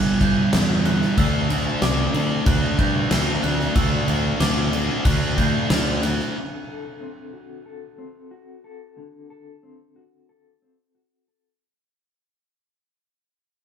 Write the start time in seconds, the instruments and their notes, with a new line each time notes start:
Already playing: fingered electric bass G1, distorted electric guitar G2 D3 G3, glockenspiel F#6
0.21 distorted electric guitar G2 D3 G3, glockenspiel G6, kick, crash
0.53 fingered electric bass E2, distorted electric guitar G2 D3 G3, snare, crash
0.85 distorted electric guitar G2 D3 G3, glockenspiel F#6, crash
1.02 snare
1.17 fingered electric bass D2, distorted electric guitar D3 A3 D4, glockenspiel E6, kick, crash
1.50 distorted electric guitar D3 A3 D4, crash
1.81 fingered electric bass C2, distorted electric guitar D3 A3 D4, glockenspiel D6, snare, crash
2.14 distorted electric guitar D3 A3 D4, fingered electric bass D3, crash
2.46 fingered electric bass D2, distorted electric guitar D3 A3 D4, glockenspiel F#6, kick, crash
2.78 fingered electric bass G2, distorted electric guitar D3 A3 D4, glockenspiel G6, kick, crash
3.10 fingered electric bass D2, distorted electric guitar D3 A3 D4, snare, crash
3.43 fingered electric bass D2, distorted electric guitar D3 A3 D4, glockenspiel F#6, crash
3.60 snare
3.75 fingered electric bass D2, distorted electric guitar D3 A3 D4, glockenspiel E6, kick, crash
4.08 fingered electric bass D2, distorted electric guitar D3 A3 D4, crash
4.40 fingered electric bass D2, distorted electric guitar D3 A3 D4, glockenspiel D6, snare, crash
4.72 distorted electric guitar D3 A3 D4, crash
5.05 fingered electric bass D2, distorted electric guitar D3 A3 D4, glockenspiel F#6, kick, crash
5.37 distorted electric guitar D3 A3 D4, glockenspiel G6, kick, crash
5.70 fingered electric bass D2, distorted electric guitar D3 A3 D4, snare, crash
6.03 distorted electric guitar D3 A3 D4, glockenspiel F#6, crash
6.19 snare
6.35 clean electric guitar D3
6.68 clean electric guitar A4
7.01 clean electric guitar C4
7.33 clean electric guitar F#4
7.66 clean electric guitar A4
7.98 clean electric guitar C4
8.31 clean electric guitar F#4
8.64 clean electric guitar A4
8.97 clean electric guitar D3
9.30 clean electric guitar A4
9.63 clean electric guitar C4
9.96 clean electric guitar F#4
10.29 clean electric guitar A4
10.62 clean electric guitar C4
10.95 clean electric guitar F#4
11.28 clean electric guitar A4